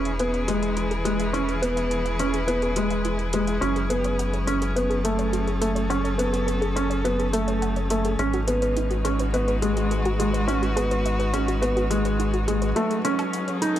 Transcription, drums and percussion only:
0.05 closed hi-hat soft
0.19 closed hi-hat soft
0.34 closed hi-hat soft
0.48 closed hi-hat medium
0.63 closed hi-hat soft
0.77 closed hi-hat soft
0.91 closed hi-hat soft
1.05 closed hi-hat medium
1.20 closed hi-hat soft
1.34 closed hi-hat soft
1.49 closed hi-hat soft
1.63 closed hi-hat medium
1.77 closed hi-hat soft
1.91 closed hi-hat soft
2.06 closed hi-hat soft
2.19 closed hi-hat medium
2.34 closed hi-hat soft
2.48 closed hi-hat soft
2.62 closed hi-hat soft
2.76 closed hi-hat medium
2.90 closed hi-hat soft
3.05 closed hi-hat soft
3.19 closed hi-hat soft
3.33 closed hi-hat medium
3.47 closed hi-hat soft
3.62 closed hi-hat soft
3.76 closed hi-hat soft
3.90 closed hi-hat medium
4.04 closed hi-hat soft
4.19 closed hi-hat soft
4.34 closed hi-hat soft
4.47 closed hi-hat medium
4.62 closed hi-hat soft
4.77 closed hi-hat soft
4.91 closed hi-hat soft
5.05 closed hi-hat medium
5.19 closed hi-hat soft
5.33 closed hi-hat soft
5.48 closed hi-hat soft
5.62 closed hi-hat medium
5.76 closed hi-hat soft
5.90 closed hi-hat soft
6.05 closed hi-hat soft
6.19 closed hi-hat medium
6.34 closed hi-hat soft
6.48 closed hi-hat soft
6.62 closed hi-hat soft
6.77 closed hi-hat medium
6.91 closed hi-hat soft
7.05 closed hi-hat soft
7.20 closed hi-hat soft
7.33 closed hi-hat medium
7.48 closed hi-hat soft
7.62 closed hi-hat soft
7.76 closed hi-hat soft
7.90 closed hi-hat medium
8.05 closed hi-hat soft
8.19 closed hi-hat soft
8.33 closed hi-hat soft
8.48 closed hi-hat medium
8.62 closed hi-hat soft
8.77 closed hi-hat soft
8.91 closed hi-hat soft
9.05 closed hi-hat medium
9.19 closed hi-hat soft
9.34 closed hi-hat soft
9.48 closed hi-hat soft
9.62 closed hi-hat medium
9.77 closed hi-hat soft
9.91 closed hi-hat soft
10.05 closed hi-hat soft
10.20 closed hi-hat medium
10.34 closed hi-hat soft
10.48 closed hi-hat soft
10.63 closed hi-hat soft
10.77 closed hi-hat medium
10.91 closed hi-hat soft
11.06 closed hi-hat soft
11.20 closed hi-hat soft
11.34 closed hi-hat medium
11.48 closed hi-hat soft
11.63 closed hi-hat soft
11.77 closed hi-hat soft
11.91 closed hi-hat medium
12.05 closed hi-hat soft
12.20 closed hi-hat soft
12.34 closed hi-hat soft
12.48 closed hi-hat medium
12.62 closed hi-hat soft
12.76 closed hi-hat soft
12.91 closed hi-hat soft
13.05 closed hi-hat medium
13.19 closed hi-hat soft
13.19 low woodblock medium
13.33 closed hi-hat soft
13.48 closed hi-hat soft
13.62 closed hi-hat medium
13.76 closed hi-hat soft

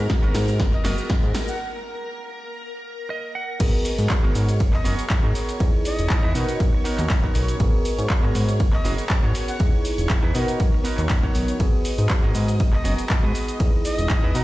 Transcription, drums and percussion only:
0.10 kick loud
0.10 snare medium
0.10 closed hi-hat medium
0.10 shaker soft
0.23 closed hi-hat soft
0.35 snare medium
0.35 open hi-hat loud
0.35 shaker medium
0.48 closed hi-hat soft
0.48 shaker soft
0.60 kick loud
0.60 snare medium
0.60 closed hi-hat medium
0.60 shaker soft
0.73 closed hi-hat soft
0.85 snare medium
0.85 open hi-hat loud
0.85 shaker medium
0.98 closed hi-hat soft
0.98 shaker soft
1.10 kick loud
1.10 snare medium
1.10 closed hi-hat medium
1.10 shaker soft
1.23 closed hi-hat soft
1.35 snare medium
1.35 open hi-hat loud
1.35 shaker medium
1.48 shaker soft
3.60 kick loud
3.60 closed hi-hat medium
3.60 crash loud
3.60 ride medium
3.60 shaker soft
3.85 open hi-hat loud
3.85 shaker medium
3.98 closed hi-hat medium
3.98 shaker soft
4.10 kick loud
4.10 clap loud
4.10 closed hi-hat medium
4.10 ride medium
4.10 shaker soft
4.35 open hi-hat loud
4.35 shaker medium
4.49 closed hi-hat medium
4.49 shaker soft
4.60 kick loud
4.60 closed hi-hat medium
4.60 ride medium
4.60 shaker soft
4.73 clap soft
4.85 open hi-hat loud
4.85 shaker medium
4.99 closed hi-hat medium
4.99 shaker soft
5.10 kick loud
5.10 clap loud
5.10 closed hi-hat medium
5.10 ride medium
5.10 shaker soft
5.35 open hi-hat loud
5.35 shaker medium
5.49 closed hi-hat medium
5.49 shaker soft
5.60 kick loud
5.60 closed hi-hat medium
5.60 ride medium
5.60 shaker soft
5.85 open hi-hat loud
5.85 shaker medium
5.99 closed hi-hat medium
5.99 shaker soft
6.10 kick loud
6.10 clap loud
6.10 closed hi-hat medium
6.10 ride medium
6.10 shaker soft
6.35 open hi-hat loud
6.35 shaker medium
6.49 closed hi-hat medium
6.49 shaker soft
6.60 kick loud
6.60 closed hi-hat medium
6.60 ride medium
6.60 shaker soft
6.85 open hi-hat loud
6.85 shaker medium
6.98 clap soft
6.98 closed hi-hat medium
6.98 shaker soft
7.10 kick loud
7.10 clap loud
7.10 open hi-hat medium
7.10 ride medium
7.10 shaker soft
7.24 kick medium
7.35 open hi-hat loud
7.35 shaker medium
7.48 closed hi-hat medium
7.48 shaker soft
7.60 kick loud
7.60 closed hi-hat medium
7.60 ride medium
7.60 shaker soft
7.85 open hi-hat loud
7.85 shaker medium
7.99 closed hi-hat medium
7.99 shaker soft
8.10 kick loud
8.10 clap loud
8.10 closed hi-hat medium
8.10 ride medium
8.10 shaker soft
8.35 open hi-hat loud
8.35 shaker medium
8.49 closed hi-hat medium
8.49 shaker soft
8.60 kick loud
8.60 closed hi-hat soft
8.60 ride medium
8.60 shaker soft
8.73 clap soft
8.85 open hi-hat loud
8.85 shaker medium
8.98 closed hi-hat medium
8.98 shaker soft
9.10 kick loud
9.10 clap loud
9.10 closed hi-hat medium
9.10 ride medium
9.10 shaker soft
9.35 open hi-hat loud
9.35 shaker medium
9.48 closed hi-hat medium
9.48 shaker soft
9.60 kick loud
9.60 closed hi-hat medium
9.60 ride medium
9.60 shaker soft
9.85 open hi-hat loud
9.85 shaker medium
9.98 closed hi-hat medium
9.98 shaker soft
10.10 kick loud
10.10 clap loud
10.10 closed hi-hat medium
10.10 ride medium
10.10 shaker soft
10.35 open hi-hat loud
10.35 shaker medium
10.48 closed hi-hat medium
10.48 shaker soft
10.60 kick loud
10.60 closed hi-hat medium
10.60 ride medium
10.60 shaker soft
10.85 open hi-hat loud
10.85 shaker medium
10.98 clap soft
10.98 closed hi-hat medium
10.98 shaker soft
11.10 kick loud
11.10 clap loud
11.10 open hi-hat medium
11.10 ride medium
11.10 shaker soft
11.23 kick medium
11.35 open hi-hat loud
11.35 shaker medium
11.48 closed hi-hat medium
11.48 shaker soft
11.60 kick loud
11.60 closed hi-hat medium
11.60 ride medium
11.60 shaker soft
11.85 open hi-hat loud
11.85 shaker medium
11.98 closed hi-hat medium
11.98 shaker soft
12.10 kick loud
12.10 clap loud
12.10 closed hi-hat medium
12.10 ride medium
12.10 shaker soft
12.35 open hi-hat loud
12.35 shaker medium
12.48 closed hi-hat medium
12.48 shaker soft
12.60 kick loud
12.60 closed hi-hat medium
12.60 ride medium
12.60 shaker soft
12.73 clap soft
12.85 open hi-hat loud
12.85 shaker medium
12.98 closed hi-hat medium
12.98 shaker soft
13.10 kick loud
13.10 clap loud
13.10 closed hi-hat medium
13.10 ride medium
13.10 shaker soft
13.35 open hi-hat loud
13.35 shaker medium
13.48 closed hi-hat medium
13.48 shaker soft
13.60 kick loud
13.60 closed hi-hat medium
13.60 ride medium
13.60 shaker soft
13.85 open hi-hat loud
13.85 shaker medium
13.98 closed hi-hat medium
13.98 shaker soft
14.10 kick loud
14.10 clap loud
14.10 closed hi-hat medium
14.10 ride medium
14.10 shaker soft
14.35 open hi-hat loud
14.35 shaker medium

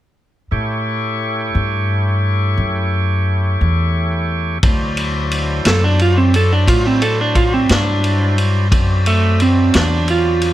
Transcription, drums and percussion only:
4.63 kick medium
4.63 ride medium
4.97 ride medium
5.31 ride medium
5.65 snare medium
5.65 ride medium
5.99 ride medium
6.34 ride medium
6.68 kick medium
6.68 ride medium
7.02 ride medium
7.35 kick medium
7.35 ride medium
7.69 snare loud
7.69 ride medium
8.04 ride medium
8.38 ride medium
8.72 kick loud
8.72 ride medium
9.06 ride medium
9.40 ride medium
9.74 snare loud
9.74 ride medium
10.08 ride medium
10.42 ride medium

